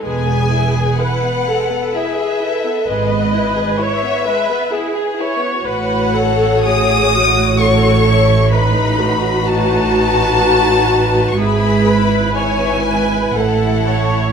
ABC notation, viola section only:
X:1
M:3/4
L:1/8
Q:1/4=64
K:E
V:1 name="Viola section"
G2 B A G A | B2 c B G c | B A G F A2 | B F4- F |
G B c B A c |]